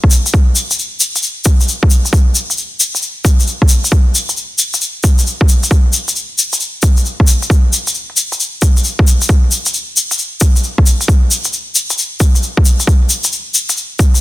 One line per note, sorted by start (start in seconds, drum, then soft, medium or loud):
0.04 kick medium
0.11 shaker medium
0.26 closed hi-hat medium
0.26 shaker medium
0.34 kick loud
0.48 closed hi-hat soft
0.56 shaker medium
0.71 closed hi-hat medium
0.71 shaker soft
0.79 shaker soft
1.00 shaker medium
1.16 closed hi-hat medium
1.16 shaker medium
1.23 shaker soft
1.45 kick loud
1.45 shaker medium
1.60 closed hi-hat medium
1.60 shaker soft
1.68 shaker soft
1.83 kick loud
1.90 shaker medium
2.05 closed hi-hat medium
2.05 shaker soft
2.13 kick loud
2.13 shaker soft
2.28 closed hi-hat soft
2.35 shaker medium
2.50 closed hi-hat medium
2.50 shaker soft
2.57 shaker soft
2.80 shaker medium
2.95 closed hi-hat medium
2.95 shaker soft
3.02 shaker soft
3.25 kick loud
3.25 shaker medium
3.39 closed hi-hat medium
3.39 shaker soft
3.47 shaker soft
3.62 kick medium
3.62 closed hi-hat soft
3.68 shaker medium
3.84 closed hi-hat medium
3.84 shaker soft
3.92 kick loud
4.07 closed hi-hat soft
4.15 shaker medium
4.29 closed hi-hat medium
4.29 shaker soft
4.37 shaker soft
4.59 shaker medium
4.73 closed hi-hat medium
4.73 shaker soft
4.81 shaker soft
5.04 kick medium
5.04 shaker medium
5.18 closed hi-hat medium
5.18 shaker soft
5.27 shaker soft
5.41 kick medium
5.49 shaker medium
5.63 closed hi-hat medium
5.63 shaker soft
5.71 kick loud
5.86 closed hi-hat soft
5.93 shaker medium
6.08 closed hi-hat medium
6.08 shaker soft
6.16 shaker soft
6.38 shaker medium
6.53 closed hi-hat medium
6.53 shaker soft
6.60 shaker soft
6.83 kick medium
6.83 shaker medium
6.97 closed hi-hat medium
6.97 shaker soft
7.05 shaker soft
7.20 kick medium
7.20 closed hi-hat medium
7.27 shaker medium
7.42 closed hi-hat medium
7.42 shaker soft
7.50 kick loud
7.50 shaker soft
7.65 closed hi-hat soft
7.73 shaker medium
7.87 closed hi-hat medium
7.87 shaker soft
8.10 closed hi-hat soft
8.17 shaker medium
8.32 closed hi-hat medium
8.32 shaker soft
8.40 shaker soft
8.62 kick medium
8.62 shaker medium
8.77 closed hi-hat medium
8.77 shaker soft
8.84 shaker soft
8.99 kick medium
8.99 closed hi-hat soft
9.07 shaker medium
9.21 closed hi-hat medium
9.21 shaker soft
9.29 kick loud
9.44 closed hi-hat soft
9.51 shaker medium
9.66 closed hi-hat medium
9.66 shaker soft
9.74 shaker soft
9.97 shaker medium
10.11 closed hi-hat medium
10.11 shaker soft
10.18 shaker soft
10.41 kick loud
10.41 shaker medium
10.56 closed hi-hat medium
10.56 shaker soft
10.63 shaker soft
10.78 kick medium
10.78 closed hi-hat soft
10.86 shaker medium
11.01 closed hi-hat medium
11.01 shaker soft
11.08 kick loud
11.08 shaker soft
11.23 closed hi-hat soft
11.31 shaker medium
11.44 closed hi-hat medium
11.44 shaker soft
11.53 shaker soft
11.75 shaker medium
11.90 closed hi-hat medium
11.90 shaker soft
11.98 shaker soft
12.20 kick loud
12.20 shaker medium
12.35 closed hi-hat medium
12.35 shaker soft
12.42 shaker soft
12.57 kick loud
12.65 shaker medium
12.80 closed hi-hat medium
12.80 shaker medium
12.87 kick loud
12.87 shaker soft
13.02 closed hi-hat soft
13.10 shaker medium
13.24 closed hi-hat medium
13.24 shaker medium
13.32 shaker soft
13.54 shaker medium
13.69 closed hi-hat medium
13.69 shaker medium
13.77 shaker soft
13.99 kick loud
13.99 shaker medium
14.14 closed hi-hat medium
14.14 shaker soft